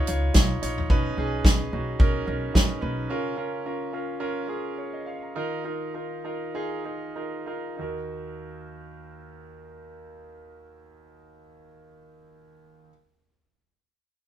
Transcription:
0.00 0.91 C#3 medium
0.00 0.08 D#4 medium
0.00 0.08 F4 medium
0.00 0.90 B4 medium
0.00 0.08 C#5 loud
0.07 0.30 C#2 medium
0.07 0.28 D#4 medium
0.07 0.28 F4 medium
0.07 0.29 C#5 medium
0.07 closed hi-hat medium
0.34 0.57 B1 medium
0.34 0.55 D#4 medium
0.34 0.55 F4 medium
0.34 0.56 C#5 medium
0.34 kick loud
0.34 snare loud
0.34 closed hi-hat medium
0.62 0.85 A#1 medium
0.62 0.83 D#4 medium
0.62 0.83 F4 medium
0.62 0.83 C#5 medium
0.62 closed hi-hat medium
0.78 floor tom medium
0.89 1.12 B1 medium
0.89 1.68 B2 medium
0.89 1.10 C#4 medium
0.89 1.11 D#4 medium
0.89 1.11 B4 loud
0.89 kick medium
1.18 1.40 B1 medium
1.18 1.38 C#4 medium
1.18 1.38 D#4 medium
1.18 1.39 G#4 medium
1.45 1.67 B1 medium
1.45 1.66 C#4 medium
1.45 1.66 D#4 medium
1.45 1.66 B4 medium
1.45 kick loud
1.45 snare loud
1.73 1.95 B1 medium
1.73 1.93 C#4 medium
1.73 1.93 D#4 medium
1.73 1.93 F#4 medium
1.99 2.22 B1 medium
1.99 2.20 C#4 medium
1.99 2.20 D#4 medium
1.99 2.20 A#4 loud
1.99 kick loud
2.27 2.50 B1 medium
2.27 2.48 C#4 medium
2.27 2.48 D#4 medium
2.27 2.48 A#4 medium
2.54 2.78 A#1 medium
2.54 2.75 C#4 medium
2.54 2.75 D#4 medium
2.54 2.75 B4 medium
2.54 kick medium
2.54 snare loud
2.81 3.05 B1 medium
2.81 3.02 C#4 medium
2.81 3.02 D#4 medium
2.81 3.03 B4 medium
3.10 3.89 C#3 medium
3.10 3.30 C#4 medium
3.10 3.31 F4 medium
3.10 3.31 A#4 loud
3.36 3.58 C#4 medium
3.36 3.58 F4 medium
3.36 3.58 A#4 medium
3.66 3.86 C#4 medium
3.66 3.86 F4 medium
3.66 3.86 A#4 medium
3.93 4.14 C#4 medium
3.93 4.14 F4 medium
3.93 4.14 A#4 medium
4.20 4.41 C#4 medium
4.20 4.41 F4 medium
4.20 4.42 A#4 medium
4.48 4.70 C#4 medium
4.48 4.70 F4 medium
4.48 4.70 G#4 medium
4.78 4.93 A#4 soft
4.78 4.93 C#5 medium
4.93 5.05 D#5 medium
5.06 5.22 C#5 soft
5.06 5.21 F5 medium
5.22 5.50 A#5 soft
5.35 6.20 D#3 medium
5.35 5.57 D#4 medium
5.35 5.57 F4 medium
5.35 5.57 A#4 medium
5.65 5.86 D#4 medium
5.65 5.86 F4 medium
5.65 5.86 A#4 medium
5.94 6.16 D#4 medium
5.94 6.16 F4 medium
5.94 6.16 A#4 medium
6.24 6.46 D#4 medium
6.24 6.47 F4 medium
6.24 6.47 A#4 medium
6.55 6.77 D#4 medium
6.55 6.77 F4 medium
6.55 6.77 G#4 medium
6.85 7.08 D#4 medium
6.85 7.08 F4 medium
6.85 7.08 G#4 medium
7.16 7.39 D#4 medium
7.16 7.39 F4 medium
7.16 7.39 A#4 medium
7.46 7.71 D#4 medium
7.46 7.71 F4 medium
7.46 7.71 A#4 medium
7.77 11.84 D#2 medium
7.77 11.83 D#4 medium
7.77 11.84 F#4 medium
7.81 11.85 A#4 medium

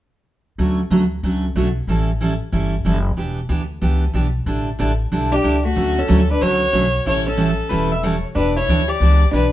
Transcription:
0.58 0.84 D2 medium
0.58 0.80 D3 medium
0.58 0.80 F#3 medium
0.58 0.80 A3 medium
0.58 0.80 C#4 medium
0.58 0.80 F#4 medium
0.91 1.18 D2 medium
0.91 1.02 D3 medium
0.91 1.02 F#3 medium
0.91 1.03 A3 medium
0.91 1.03 C#4 medium
0.91 1.03 F#4 medium
1.23 1.51 C#2 medium
1.23 1.45 D3 medium
1.23 1.45 F#3 soft
1.23 1.45 A3 medium
1.23 1.45 C#4 medium
1.23 1.45 F#4 medium
1.55 1.83 B1 medium
1.55 1.67 D3 medium
1.55 1.67 F#3 medium
1.55 1.67 A3 medium
1.55 1.67 C#4 medium
1.55 1.68 F#4 medium
1.87 2.39 A1 medium
1.87 2.09 E3 medium
1.87 2.10 G3 medium
1.87 2.10 C#4 medium
1.87 2.10 E4 medium
1.87 2.10 A4 medium
2.21 2.32 E3 medium
2.21 2.32 G3 medium
2.21 2.32 C#4 medium
2.21 2.33 E4 medium
2.21 2.33 A4 medium
2.52 2.80 G1 medium
2.52 2.74 E3 medium
2.52 2.74 G3 medium
2.52 2.74 C#4 medium
2.52 2.74 E4 medium
2.52 2.74 A4 medium
2.85 3.12 F#1 medium
2.85 2.96 E3 medium
2.85 2.97 G3 medium
2.85 2.97 C#4 medium
2.85 2.97 E4 medium
2.85 2.97 A4 medium
3.17 3.43 E1 medium
3.17 3.38 E3 medium
3.17 3.39 B3 medium
3.17 3.39 D4 soft
3.17 3.39 G4 medium
3.49 3.77 D2 medium
3.49 3.61 E3 medium
3.49 3.61 B3 medium
3.49 3.61 D4 medium
3.49 3.61 G4 medium
3.81 4.09 C#2 medium
3.81 4.03 E3 medium
3.81 4.03 B3 medium
3.81 4.04 D4 medium
3.81 4.04 G4 medium
4.14 4.42 B1 medium
4.14 4.26 E3 medium
4.14 4.26 B3 medium
4.14 4.26 D4 medium
4.14 4.26 G4 medium
4.46 4.72 A1 medium
4.46 4.68 D3 medium
4.46 4.68 G3 medium
4.46 4.69 D4 medium
4.46 4.69 E4 medium
4.46 4.69 A4 medium
4.79 5.07 A1 medium
4.79 4.91 D3 medium
4.79 4.91 G3 medium
4.79 4.91 D4 medium
4.79 4.91 E4 medium
4.79 4.91 A4 medium
5.12 5.39 B1 medium
5.12 5.33 D3 medium
5.12 5.33 G3 medium
5.12 5.33 D4 medium
5.12 5.33 E4 medium
5.12 5.34 A4 medium
5.32 5.62 D4 medium
5.32 5.62 G4 medium
5.43 5.72 C#2 medium
5.43 5.55 D3 medium
5.43 5.55 G3 medium
5.43 5.56 D4 medium
5.43 5.56 E4 medium
5.43 5.56 A4 medium
5.65 5.95 A3 medium
5.65 6.00 F#4 medium
5.76 6.02 D2 medium
5.76 5.97 D3 medium
5.76 5.98 F#3 medium
5.76 5.98 A3 medium
5.76 5.98 C#4 medium
5.76 5.98 F#4 medium
5.99 6.30 C#4 medium
5.99 6.30 A4 medium
6.08 6.37 D2 medium
6.08 6.20 D3 medium
6.08 6.20 F#3 medium
6.08 6.20 A3 medium
6.08 6.20 C#4 medium
6.08 6.21 F#4 medium
6.31 6.43 D4 medium
6.31 6.44 B4 medium
6.41 6.69 C#2 medium
6.41 6.62 D3 medium
6.41 6.62 F#3 medium
6.41 6.63 A3 medium
6.41 6.63 C#4 medium
6.41 6.63 F#4 medium
6.41 7.07 F#4 medium
6.41 7.06 C#5 loud
6.73 7.01 B1 medium
6.73 6.85 D3 medium
6.73 6.85 F#3 medium
6.73 6.85 A3 medium
6.73 6.85 C#4 medium
6.73 6.86 F#4 medium
7.05 7.58 A1 medium
7.05 7.27 E3 soft
7.05 7.27 G3 soft
7.05 7.27 C#4 medium
7.05 7.28 E4 medium
7.05 7.26 E4 medium
7.05 7.28 A4 medium
7.05 7.26 C#5 medium
7.28 7.88 C#4 medium
7.28 7.88 A4 medium
7.37 7.49 E3 medium
7.37 7.49 G3 medium
7.37 7.50 C#4 medium
7.37 7.50 E4 medium
7.37 7.50 A4 medium
7.69 8.23 E1 medium
7.69 7.91 E3 medium
7.69 7.92 G3 medium
7.69 7.92 C#4 medium
7.69 7.92 E4 medium
7.69 7.92 A4 medium
7.69 7.90 B4 medium
7.92 8.03 E5 medium
8.03 8.15 E3 medium
8.03 8.15 G3 medium
8.03 8.15 C#4 medium
8.03 8.15 E4 medium
8.03 8.15 A4 medium
8.03 8.24 C#5 medium
8.35 8.61 E1 medium
8.35 8.57 E3 medium
8.35 8.57 B3 soft
8.35 8.55 D4 medium
8.35 8.57 D4 medium
8.35 8.57 G4 medium
8.35 8.55 B4 medium
8.57 8.88 E4 medium
8.57 8.91 C#5 medium
8.68 8.95 D2 medium
8.68 8.80 E3 medium
8.68 8.80 B3 medium
8.68 8.80 D4 medium
8.68 8.80 G4 medium
8.88 9.32 G4 medium
8.88 9.32 D5 loud
9.00 9.28 C#2 medium
9.00 9.22 E3 medium
9.00 9.22 B3 medium
9.00 9.22 D4 medium
9.00 9.22 G4 medium
9.31 9.52 B1 medium
9.31 9.44 E3 medium
9.31 9.44 B3 medium
9.31 9.51 D4 medium
9.31 9.45 D4 medium
9.31 9.45 G4 medium
9.31 9.52 B4 medium

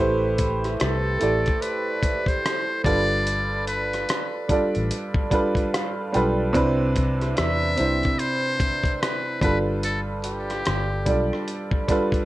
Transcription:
0.00 0.75 A1 medium
0.00 1.12 A3 medium
0.00 1.12 E4 medium
0.00 1.13 G4 medium
0.00 1.13 B4 medium
0.00 1.14 C5 loud
0.38 kick medium
0.38 closed hi-hat medium
0.64 cross-stick soft
0.64 closed hi-hat soft
0.80 1.17 C2 medium
0.80 1.63 A4 medium
0.80 cross-stick medium
0.80 closed hi-hat medium
1.19 1.44 A1 medium
1.19 2.74 A3 medium
1.19 2.74 E4 medium
1.19 2.75 G4 soft
1.19 2.75 A4 medium
1.19 closed hi-hat medium
1.23 2.76 D5 medium
1.46 kick medium
1.46 closed hi-hat soft
1.62 2.30 B4 medium
1.62 closed hi-hat medium
2.03 kick medium
2.03 closed hi-hat medium
2.26 2.84 C5 medium
2.26 kick medium
2.26 closed hi-hat soft
2.46 cross-stick medium
2.46 closed hi-hat medium
2.84 4.04 G1 medium
2.84 4.38 G3 medium
2.84 4.39 D4 medium
2.84 4.39 F4 medium
2.84 4.40 A4 medium
2.84 3.63 D5 loud
2.84 kick medium
2.84 closed hi-hat medium
2.88 4.40 B4 medium
3.27 closed hi-hat medium
3.67 4.45 B4 medium
3.67 closed hi-hat medium
3.93 cross-stick soft
3.93 closed hi-hat soft
4.09 cross-stick medium
4.09 closed hi-hat medium
4.48 5.26 G3 medium
4.48 5.26 D4 medium
4.48 5.27 F4 medium
4.48 5.27 A4 medium
4.48 muted fingered electric bass stroke soft
4.48 kick medium
4.48 closed hi-hat medium
4.52 5.28 D5 medium
4.75 4.90 A1 medium
4.75 closed hi-hat soft
4.91 closed hi-hat medium
5.14 kick medium
5.30 6.08 G3 medium
5.30 6.08 D4 medium
5.30 6.09 F4 medium
5.30 6.09 A4 medium
5.30 6.10 B4 medium
5.30 kick medium
5.30 closed hi-hat medium
5.55 kick medium
5.55 closed hi-hat soft
5.74 6.11 F5 medium
5.74 cross-stick medium
5.74 closed hi-hat medium
6.12 6.52 B1 medium
6.12 6.51 G3 medium
6.12 6.52 D4 medium
6.12 6.52 F4 medium
6.12 6.53 A4 medium
6.12 6.53 B4 medium
6.12 6.52 G5 medium
6.12 closed hi-hat medium
6.53 7.33 C2 loud
6.53 7.69 C3 loud
6.53 7.70 C4 medium
6.53 7.70 D4 loud
6.53 7.71 E4 medium
6.53 7.71 B4 loud
6.53 kick loud
6.53 closed hi-hat medium
6.96 kick medium
6.96 closed hi-hat medium
7.21 cross-stick soft
7.21 closed hi-hat soft
7.37 7.75 E2 medium
7.37 8.21 E5 loud
7.37 cross-stick medium
7.37 closed hi-hat medium
7.77 8.02 C2 medium
7.77 9.31 C3 medium
7.77 9.32 C4 medium
7.77 9.32 D4 medium
7.77 9.33 E4 medium
7.77 9.33 C5 medium
7.77 closed hi-hat medium
8.03 kick medium
8.03 closed hi-hat soft
8.19 8.96 C5 medium
8.19 closed hi-hat medium
8.60 kick medium
8.60 closed hi-hat medium
8.84 kick medium
8.84 closed hi-hat soft
8.96 9.03 C5 medium
9.01 9.42 B4 medium
9.01 cross-stick medium
9.01 closed hi-hat medium
9.41 10.61 G1 medium
9.41 10.96 G3 medium
9.41 10.96 D4 medium
9.41 10.97 F4 medium
9.41 10.97 A4 medium
9.41 9.59 B4 medium
9.41 10.98 B4 medium
9.41 kick medium
9.41 closed hi-hat medium
9.83 10.00 A4 medium
9.83 closed hi-hat medium
10.24 11.44 G4 medium
10.24 closed hi-hat medium
10.50 cross-stick soft
10.50 closed hi-hat soft
10.65 11.04 G1 medium
10.65 cross-stick medium
10.65 closed hi-hat medium
11.05 11.30 B1 medium
11.05 11.83 G3 medium
11.05 11.83 D4 medium
11.05 11.84 F4 medium
11.05 11.84 A4 medium
11.05 11.85 D5 medium
11.05 kick medium
11.05 closed hi-hat medium
11.33 cross-stick soft
11.48 closed hi-hat medium
11.71 kick medium
11.88 12.25 G3 medium
11.88 12.25 D4 medium
11.88 12.25 F4 medium
11.88 12.25 A4 medium
11.88 12.25 B4 medium
11.88 kick medium
11.88 cross-stick soft
11.88 closed hi-hat medium
12.12 kick medium
12.12 closed hi-hat soft

